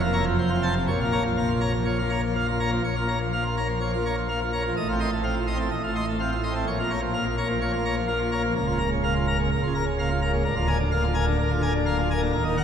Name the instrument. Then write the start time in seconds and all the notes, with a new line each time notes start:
pipe organ
Already playing: F1 F2
0.01 F4
0.06 A#3
0.13 C#5 A#5
0.26 F3
0.38 F1 F2 C5
0.51 F4
0.55 C4
0.63 C5 A5
0.75 C3
0.88 A#1 A#2 C#5
1.01 F4
1.05 A#3
1.12 C#5 A#5
1.25 F3
1.37 A#3 F5
1.48 F4
1.61 C#5 A#5
1.69 A#3
1.73 F3
1.85 F3 C#5
1.99 A#3 F4
2.10 C#5 A#5
2.23 F3
2.35 A#3 F5
2.47 F4
2.60 C#5 A#5
2.68 A#3
2.72 F3
2.84 A#1 A#2 C#5
2.96 F4
3.01 A#3
3.08 C#5 A#5
3.21 F3
3.33 A#3 F5
3.45 F4
3.57 C#5 A#5
3.65 F3 A#3
3.81 F3 C#5
3.93 F4
3.97 A#3
4.06 C#5 A#5
4.17 F3
4.28 A#3 F5
4.41 F4
4.53 C#5 A#5
4.61 F3 A#3
4.76 A1 A2 D#5
4.89 C4 F4
5.00 D#5 C6
5.12 A3
5.23 C4 F5
5.35 F4
5.47 D#5 C6
5.55 C4
5.59 A3
5.71 A1 A2 D#5
5.83 F4
5.87 A3
5.96 D#5 C6
6.08 A3
6.20 C4 F5
6.32 F4
6.43 D#5 C6
6.52 A3 C4
6.67 A#1 A#2 C#5
6.80 A#3 F4
6.90 C#5 A#5
7.02 F3
7.14 A#3 F5
7.25 F4
7.38 C#5 A#5
7.45 F3 A#3
7.61 F3 C#5
7.73 F4
7.77 A#3
7.85 C#5 A#5
7.97 F3
8.08 A#3 F5
8.19 F4
8.32 C#5 A#5
8.40 A#3
8.44 F3
8.55 C#1 C#2 A#4
8.67 F4
8.71 A#3
8.79 A#4 A#5
8.92 C#3
9.03 A#3 F5
9.15 F4
9.27 A#4 A#5
9.35 C#3 A#3
9.51 C#1 C#2 A#4
9.63 F4
9.67 C#3
9.75 A#4 A#5
9.86 C#3
9.98 A#3 F5
10.10 F4
10.22 A#4 A#5
10.30 C#3 A#3
10.45 D1 D2 A#4
10.56 F4
10.61 A#3
10.67 A#4 G#5
10.79 D3
10.91 A#3 F5
11.03 F4
11.14 A#4 G#5
11.22 A#3
11.27 D3
11.38 D1 D2 A#4
11.50 F4
11.54 D3
11.62 A#4 G#5
11.75 D3
11.86 A#3 F5
11.98 F4
12.10 A#4 G#5
12.17 A#3
12.22 D3
12.32 D#1 D#2 A#4
12.45 D#4
12.49 A#3
12.57 A#4 F#5